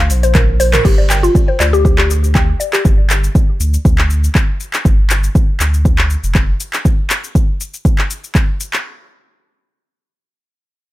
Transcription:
0.00 0.11 D2 medium
0.10 0.79 A#1 loud
0.10 open hi-hat loud
0.10 shaker medium
0.23 0.34 C5 medium
0.23 closed hi-hat medium
0.23 shaker medium
0.35 0.42 A#4 medium
0.35 kick loud
0.35 clap medium
0.35 closed hi-hat soft
0.35 mid tom medium
0.35 shaker soft
0.60 0.67 C5 loud
0.60 open hi-hat loud
0.60 shaker medium
0.73 0.84 A#4 medium
0.73 clap medium
0.73 closed hi-hat medium
0.73 mid tom medium
0.73 shaker soft
0.85 1.29 G1 medium
0.85 0.97 G4 medium
0.85 kick loud
0.85 crash medium
0.85 shaker soft
0.98 1.09 D5 medium
1.10 1.22 G5 medium
1.10 clap loud
1.10 shaker medium
1.23 1.34 F4 loud
1.23 shaker medium
1.35 kick loud
1.35 shaker soft
1.48 1.59 C5 medium
1.60 2.54 D2 medium
1.60 1.72 D5 medium
1.60 clap medium
1.60 shaker medium
1.73 1.84 G4 loud
1.73 shaker medium
1.85 1.97 G4 medium
1.85 kick loud
1.85 shaker soft
1.98 2.09 G4 medium
1.98 clap medium
2.10 shaker medium
2.24 shaker medium
2.35 2.42 G5 medium
2.35 kick loud
2.35 clap medium
2.35 shaker soft
2.60 2.72 D5 medium
2.60 shaker medium
2.73 2.84 G4 medium
2.73 clap medium
2.73 shaker soft
2.85 3.29 G1 medium
2.85 kick loud
2.85 shaker soft
3.10 clap loud
3.10 shaker loud
3.24 shaker medium
3.35 kick loud
3.35 shaker soft
3.60 3.77 D2 medium
3.60 shaker loud
3.74 shaker medium
3.85 4.29 D2 medium
3.85 kick loud
3.85 shaker soft
3.98 clap medium
4.10 shaker medium
4.24 shaker medium
4.35 kick loud
4.35 clap medium
4.35 shaker soft
4.60 shaker loud
4.73 clap medium
4.73 shaker medium
4.85 5.29 G1 medium
4.85 kick loud
4.85 shaker soft
5.10 clap loud
5.10 shaker medium
5.24 shaker medium
5.35 kick loud
5.35 shaker soft
5.60 6.16 D2 medium
5.60 clap medium
5.60 shaker medium
5.74 shaker medium
5.85 kick loud
5.85 shaker soft
5.98 clap medium
6.10 shaker medium
6.24 6.54 F1 loud
6.24 shaker medium
6.35 kick loud
6.35 clap medium
6.35 shaker soft
6.60 shaker loud
6.73 clap medium
6.73 shaker soft
6.85 kick loud
6.85 shaker soft
7.10 clap medium
7.10 shaker medium
7.24 shaker medium
7.35 kick loud
7.35 shaker soft
7.61 shaker medium
7.74 shaker medium
7.85 kick loud
7.85 shaker soft
7.98 clap medium
8.10 shaker medium
8.24 shaker medium
8.35 kick loud
8.35 clap medium
8.35 shaker soft
8.60 shaker medium
8.73 clap medium
8.73 shaker medium

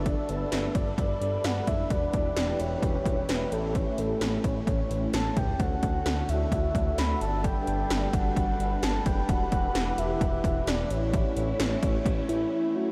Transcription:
0.00 0.15 G1 medium
0.00 1.88 G3 medium
0.00 1.87 D4 medium
0.00 1.87 A4 medium
0.00 3.48 B4 medium
0.06 0.30 D5 loud
0.06 kick loud
0.06 closed hi-hat medium
0.29 0.45 G1 loud
0.29 0.77 B4 loud
0.29 closed hi-hat medium
0.52 0.68 G1 loud
0.52 snare loud
0.52 closed hi-hat medium
0.75 0.91 G1 loud
0.75 0.98 D5 medium
0.75 kick loud
0.75 closed hi-hat medium
0.98 1.14 G1 loud
0.98 1.46 D5 loud
0.98 kick loud
0.98 closed hi-hat medium
1.21 1.37 G1 loud
1.21 closed hi-hat medium
1.44 1.60 G1 loud
1.44 1.67 F#5 loud
1.44 snare loud
1.44 closed hi-hat medium
1.67 1.84 F#1 medium
1.67 1.92 E5 loud
1.67 kick medium
1.67 closed hi-hat medium
1.90 2.07 E1 loud
1.90 3.50 E3 medium
1.90 5.56 E4 medium
1.90 3.50 G4 medium
1.90 2.61 D5 loud
1.90 kick loud
1.90 closed hi-hat medium
2.13 2.30 E1 loud
2.13 kick medium
2.13 closed hi-hat medium
2.37 2.53 E1 loud
2.37 snare loud
2.37 closed hi-hat medium
2.60 2.76 E1 medium
2.60 3.30 C#5 loud
2.60 closed hi-hat medium
2.83 2.99 E1 loud
2.83 kick loud
2.83 closed hi-hat medium
3.06 3.22 E1 loud
3.06 kick medium
3.06 closed hi-hat medium
3.29 3.45 E1 loud
3.29 3.54 B4 medium
3.29 snare loud
3.29 closed hi-hat medium
3.52 3.84 A1 medium
3.52 5.58 A3 medium
3.52 5.58 C#4 medium
3.52 3.77 A4 loud
3.52 closed hi-hat medium
3.75 4.00 C#5 loud
3.75 kick loud
3.75 closed hi-hat medium
3.98 4.14 A1 medium
3.98 4.46 A4 loud
3.98 closed hi-hat medium
4.21 4.37 A1 loud
4.21 snare loud
4.21 closed hi-hat medium
4.44 4.60 A1 loud
4.44 4.67 C#5 loud
4.44 kick loud
4.44 closed hi-hat medium
4.67 4.83 A1 medium
4.67 5.10 C#5 loud
4.67 kick loud
4.67 closed hi-hat medium
4.90 5.07 A1 loud
4.90 closed hi-hat medium
5.13 5.30 A1 loud
5.13 5.38 A5 loud
5.13 snare loud
5.13 closed hi-hat medium
5.36 5.53 C#2 medium
5.36 5.61 G5 loud
5.36 kick medium
5.36 closed hi-hat medium
5.36 mid tom loud
5.60 5.76 D2 loud
5.60 7.20 D3 medium
5.60 9.25 D4 medium
5.60 7.20 F#4 medium
5.60 9.25 A4 medium
5.60 6.31 F#5 loud
5.60 kick loud
5.60 closed hi-hat medium
5.83 5.99 D2 loud
5.83 kick loud
5.83 closed hi-hat medium
6.06 6.22 D2 loud
6.06 snare loud
6.06 closed hi-hat medium
6.29 6.45 D2 loud
6.29 6.98 E5 loud
6.29 closed hi-hat medium
6.52 6.68 D2 medium
6.52 kick loud
6.52 closed hi-hat medium
6.75 6.91 D2 medium
6.75 kick loud
6.75 closed hi-hat medium
6.98 7.14 D2 loud
6.98 7.20 B5 loud
6.98 snare loud
6.98 closed hi-hat medium
7.21 7.54 G1 medium
7.21 9.27 G3 medium
7.21 10.87 B4 medium
7.21 7.46 A5 loud
7.21 closed hi-hat medium
7.44 8.15 G5 loud
7.44 kick medium
7.44 closed hi-hat medium
7.67 7.84 G1 loud
7.67 closed hi-hat medium
7.90 8.07 G1 loud
7.90 snare loud
7.90 closed hi-hat medium
8.13 8.30 G1 loud
8.13 8.84 F#5 loud
8.13 kick loud
8.13 closed hi-hat medium
8.36 8.53 G1 loud
8.36 kick medium
8.36 closed hi-hat medium
8.60 8.76 G1 loud
8.60 closed hi-hat medium
8.83 8.99 G1 loud
8.83 9.07 A5 loud
8.83 snare loud
8.83 closed hi-hat medium
9.06 9.22 F#1 medium
9.06 9.28 G5 loud
9.06 kick medium
9.06 closed hi-hat medium
9.29 9.45 E1 loud
9.29 10.89 E3 medium
9.29 12.92 E4 medium
9.29 10.89 G4 medium
9.29 10.00 F#5 loud
9.29 kick loud
9.29 closed hi-hat medium
9.52 9.68 E1 loud
9.52 kick loud
9.52 closed hi-hat medium
9.75 9.91 E1 loud
9.75 snare loud
9.75 closed hi-hat medium
9.98 10.14 E1 loud
9.98 10.69 E5 loud
9.98 closed hi-hat medium
10.21 10.37 E1 loud
10.21 kick loud
10.21 closed hi-hat medium
10.44 10.60 E1 loud
10.44 kick medium
10.44 closed hi-hat medium
10.67 10.83 E1 loud
10.67 10.92 D5 loud
10.67 snare loud
10.67 closed hi-hat medium
10.90 11.23 A1 medium
10.90 12.92 A3 medium
10.90 12.92 C#4 medium
10.90 12.28 C#5 loud
10.90 closed hi-hat medium
11.13 kick loud
11.13 closed hi-hat medium
11.37 11.53 A1 medium
11.37 closed hi-hat medium
11.60 11.76 A1 medium
11.60 snare loud
11.60 closed hi-hat medium
11.83 11.99 A1 loud
11.83 kick loud
11.83 closed hi-hat medium
12.06 12.22 A1 loud
12.06 kick loud
12.06 closed hi-hat medium
12.29 12.45 A1 loud
12.29 12.77 E4 loud
12.29 closed hi-hat medium
12.75 12.92 F#4 loud

